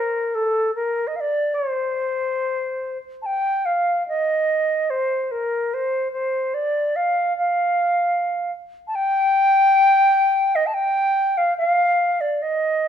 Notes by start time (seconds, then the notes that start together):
Already playing: A#4
0.35 A4
0.75 A#4
1.07 D#5
1.16 F5
1.20 D5
1.54 C5
3.22 G5 A5
3.66 F5
4.08 D#5
4.90 C5
5.24 C5
5.31 A#4
5.74 C5
6.12 C5
6.54 D5
6.96 F5
7.38 F5
8.88 A5
8.95 G5
10.55 D#5
10.66 A5
10.74 G5
11.38 F5
11.58 F5
12.21 D5
12.42 D#5